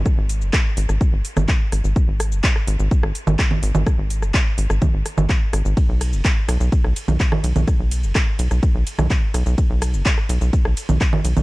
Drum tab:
RD |----------------|----------------|----------------|x-x-x-x-x-x-x-x-|
HH |--o---o---o---o-|--o---o---o---o-|--o---o---o---o-|--o---o---o---o-|
SH |x-xxx-xxx-xxx-xx|x-xxx-xxx-xxx-xx|x-xxx-xxx-xxx-xx|x-xxx-xxx-xxx-xx|
CP |----x-------x---|----x-------x---|----x-------x---|----x-------x---|
SD |r---r--r---r--r-|--r--r---r--r---|r--r---r--r---r-|--r---r--r---r--|
CG |-----------O----|-----------O-O-O|--------O--O----|-----------O-O-O|
BD |o---o---o---o---|o---o---o---o---|o---o---o---o---|o---o---o---o---|

RD |x-x-x-x-x-x-x-x-|x-x-x-x-x-x-x-x-|
HH |--o---o---o---o-|--o---o---o---o-|
SH |x-xxx-xxx-xxx-xx|x-xxx-xxx-xxx-xx|
CP |----x-------x---|----x-------x---|
SD |r---r--r---r--r-|--r--r---r--r---|
CG |-----------O----|-----------O-O-O|
BD |o---o---o---o---|o---o---o---o---|